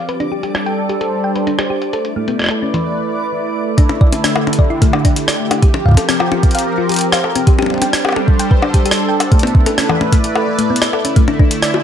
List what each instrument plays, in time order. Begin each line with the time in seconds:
Already playing: analog synth pad C4 G4, synth texture D5
0.09 analog synth pad G3, synth arpeggio sound B4, closed hi-hat
0.20 synth arpeggio sound D4, closed hi-hat
0.32 analog synth pad D4 A4, synth arpeggio sound G4
0.43 synth arpeggio sound G4, closed hi-hat
0.55 cross-stick, closed hi-hat
0.66 synth arpeggio sound G5, closed hi-hat
0.76 analog synth pad C5
0.89 synth arpeggio sound G4, closed hi-hat
1.01 synth arpeggio sound A4, closed hi-hat
1.24 synth arpeggio sound G5
1.36 synth arpeggio sound B4, closed hi-hat
1.47 synth arpeggio sound D4, closed hi-hat
1.59 synth arpeggio sound G4, cross-stick, closed hi-hat
1.70 synth arpeggio sound G4
1.82 closed hi-hat
1.93 analog synth pad A3, synth arpeggio sound A4, closed hi-hat
2.05 analog synth pad E4, closed hi-hat
2.16 synth arpeggio sound A3
2.28 synth arpeggio sound B3, analog synth pad D5, closed hi-hat
2.39 cross-stick, closed hi-hat
2.42 analog synth pad B4, cross-stick
2.44 cross-stick
2.46 cross-stick
2.49 synth arpeggio sound A4, cross-stick, closed hi-hat
2.63 synth arpeggio sound C#4
2.74 synth arpeggio sound E3, closed hi-hat
3.78 analog synth pad D3, synth arpeggio sound D4, kick, closed hi-hat
3.89 high tom
4.01 synth arpeggio sound D5, kick
4.12 closed hi-hat, high tom
4.24 synth arpeggio sound D4, cross-stick, closed hi-hat
4.31 analog synth pad G4
4.36 synth arpeggio sound E4, high bongo
4.47 high tom
4.53 closed hi-hat
4.59 synth arpeggio sound D5, kick
4.70 synth arpeggio sound E4
4.82 synth arpeggio sound A3, kick, closed hi-hat
4.93 synth arpeggio sound D4, high bongo
5.05 synth arpeggio sound D4, kick, closed hi-hat
5.16 closed hi-hat
5.28 synth arpeggio sound D5, cross-stick
5.51 synth arpeggio sound D4, closed hi-hat, high bongo
5.62 analog synth pad F3, synth arpeggio sound G4, kick, closed hi-hat
5.74 high tom
5.86 analog synth pad C4, synth arpeggio sound F5, kick
5.88 kick
5.91 kick
5.94 synth arpeggio sound A4, analog synth pad A#4, kick, closed hi-hat, high tom
6.09 synth arpeggio sound C4, cross-stick, closed hi-hat
6.20 synth arpeggio sound F4, high bongo
6.32 synth arpeggio sound F4, high tom
6.43 kick, closed hi-hat
6.51 closed hi-hat
6.55 synth arpeggio sound F5, closed hi-hat
6.59 closed hi-hat
6.78 synth arpeggio sound F4
6.89 synth arpeggio sound G4, closed hi-hat
6.92 closed hi-hat
6.94 closed hi-hat
6.96 closed hi-hat
6.99 closed hi-hat
7.01 closed hi-hat
7.12 synth arpeggio sound F5, cross-stick, high bongo
7.24 synth arpeggio sound A4, high bongo
7.36 synth arpeggio sound C4, closed hi-hat
7.47 analog synth pad G3, synth arpeggio sound G4, kick, closed hi-hat
7.56 analog synth pad D4, synth arpeggio sound G4, high tom
7.62 high tom
7.66 high tom
7.70 high tom
7.74 high tom
7.78 closed hi-hat, high tom
7.82 synth arpeggio sound G5, high tom
7.93 analog synth pad A4, cross-stick, closed hi-hat
8.05 synth arpeggio sound G4, high bongo
8.09 high bongo
8.12 synth arpeggio sound A4, high tom, high bongo
8.20 analog synth pad C5
8.28 kick
8.39 synth arpeggio sound G5, closed hi-hat
8.51 synth arpeggio sound B4, kick
8.62 synth arpeggio sound D4, high bongo
8.74 synth arpeggio sound G4, kick, closed hi-hat
8.86 synth arpeggio sound G4, closed hi-hat
8.91 cross-stick
9.09 synth arpeggio sound G5
9.20 closed hi-hat, high bongo
9.32 analog synth pad A3, synth arpeggio sound A3, kick, closed hi-hat
9.39 synth arpeggio sound B3, analog synth pad E4, closed hi-hat, high tom
9.45 analog synth pad B4, closed hi-hat
9.55 kick
9.66 synth arpeggio sound A4, closed hi-hat, high tom
9.78 synth arpeggio sound C#4, cross-stick, closed hi-hat
9.89 synth arpeggio sound E3, high bongo
10.01 synth arpeggio sound A3, high tom
10.06 analog synth pad D5
10.12 synth arpeggio sound A3, kick, closed hi-hat
10.24 closed hi-hat
10.36 synth arpeggio sound A4, high bongo
10.59 synth arpeggio sound A3, closed hi-hat
10.70 synth arpeggio sound B3
10.76 closed hi-hat
10.82 cross-stick, high bongo
10.93 synth arpeggio sound A4, high bongo
11.05 synth arpeggio sound C#4, closed hi-hat
11.16 analog synth pad D3, synth arpeggio sound A3, kick, closed hi-hat
11.28 synth arpeggio sound D4, high tom
11.39 synth arpeggio sound D4, kick
11.51 closed hi-hat
11.62 synth arpeggio sound D5, cross-stick, closed hi-hat
11.74 analog synth pad G4, high bongo